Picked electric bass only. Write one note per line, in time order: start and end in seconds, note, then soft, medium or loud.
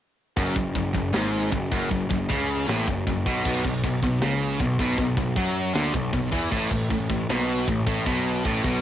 0.37 0.55 F#1 loud
0.56 0.74 F#1 medium
0.75 0.93 F#1 medium
0.95 1.13 F#1 medium
1.14 1.50 G#1 medium
1.52 1.70 F#1 medium
1.72 1.90 F#1 loud
1.91 2.09 F#1 medium
2.10 2.28 F#1 medium
2.30 2.66 C#2 medium
2.68 2.86 A1 medium
2.87 3.05 F#1 medium
3.07 3.24 F#1 medium
3.26 3.44 B1 medium
3.45 3.63 B1 medium
3.65 3.82 B1 medium
3.83 4.01 B1 medium
4.03 4.21 B1 medium
4.23 4.58 C#2 medium
4.60 4.78 B1 medium
4.79 4.97 B1 medium
4.98 5.16 B1 medium
5.17 5.35 B1 medium
5.36 5.73 F#2 loud
5.75 5.93 D2 loud
5.94 6.13 B1 medium
6.13 6.32 B1 medium
6.33 6.51 E2 medium
6.52 6.70 A1 medium
6.71 6.89 A1 medium
6.90 7.09 A1 medium
7.10 7.28 A1 medium
7.29 7.65 B1 medium
7.68 7.86 A1 medium
7.87 8.05 A1 medium
8.07 8.43 B1 loud
8.45 8.63 A1 loud
8.65 8.81 B1 loud